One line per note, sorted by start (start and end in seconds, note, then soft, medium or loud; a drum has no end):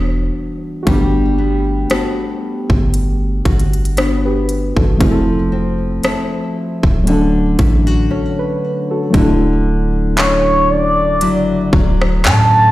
0.00 0.31 E1 loud
0.00 0.86 E3 medium
0.00 0.86 G3 medium
0.00 0.86 B3 medium
0.00 0.87 D4 medium
0.00 0.82 F#4 medium
0.83 4.96 A3 medium
0.83 3.96 F#4 medium
0.87 1.86 G1 loud
0.87 5.00 G3 medium
0.87 4.97 B3 medium
0.87 3.94 D4 medium
0.87 kick loud
0.87 closed hi-hat medium
0.91 3.95 G4 medium
1.38 1.89 B3 medium
1.90 3.96 B3 medium
1.90 3.44 F#4 medium
1.90 5.42 A4 medium
1.90 cross-stick loud
1.90 closed hi-hat medium
2.70 3.42 G1 medium
2.70 kick medium
2.94 closed hi-hat medium
3.45 4.73 G1 medium
3.45 5.12 F#4 medium
3.45 kick medium
3.45 closed hi-hat soft
3.59 closed hi-hat soft
3.73 closed hi-hat medium
3.85 closed hi-hat medium
3.97 5.12 B3 medium
3.97 4.24 D4 medium
3.97 4.24 F#4 medium
3.97 cross-stick loud
3.97 closed hi-hat medium
4.25 4.75 G4 medium
4.25 4.74 B4 medium
4.49 closed hi-hat medium
4.77 4.99 G1 loud
4.77 5.26 F#4 medium
4.77 5.10 A4 medium
4.77 kick loud
4.97 6.00 F1 loud
4.97 7.01 F3 medium
4.97 7.07 F3 medium
4.97 7.02 A3 medium
4.97 kick loud
4.97 closed hi-hat medium
5.01 7.03 C4 medium
5.01 7.05 E4 medium
5.05 5.10 G#4 medium
5.11 7.09 A4 medium
5.52 6.02 C4 medium
6.03 7.18 C4 medium
6.03 7.19 E4 medium
6.03 9.55 A4 medium
6.03 cross-stick loud
6.03 closed hi-hat medium
6.83 7.56 D1 medium
6.83 kick medium
7.03 9.13 D3 medium
7.03 9.08 F#3 medium
7.03 9.09 A3 medium
7.03 closed hi-hat medium
7.08 9.10 C#4 medium
7.08 9.11 D4 medium
7.12 8.10 A4 medium
7.59 8.09 A1 loud
7.59 7.87 E4 medium
7.59 kick medium
7.59 closed hi-hat medium
7.87 9.25 F#4 soft
8.11 10.17 C#4 medium
8.11 8.38 A4 medium
8.11 8.37 C#5 medium
8.39 8.88 B4 medium
8.91 9.40 F#4 medium
8.91 9.17 A4 medium
9.10 12.72 D3 medium
9.10 12.72 F#3 medium
9.10 12.72 A3 medium
9.10 closed hi-hat medium
9.14 11.23 D1 loud
9.14 12.72 D4 medium
9.14 12.72 E4 medium
9.14 kick loud
9.18 12.72 A4 medium
10.17 11.21 C#4 medium
10.17 10.71 C#5 loud
10.17 clap loud
10.17 closed hi-hat medium
10.70 11.73 D5 loud
11.21 11.70 F#1 loud
11.21 11.72 F#3 medium
11.21 12.72 E4 medium
11.21 closed hi-hat medium
11.73 12.26 D1 loud
11.73 12.72 F#3 medium
11.73 kick loud
12.02 cross-stick loud
12.24 12.72 A2 loud
12.24 12.72 C#4 medium
12.24 12.72 A5 loud
12.24 clap loud
12.24 closed hi-hat medium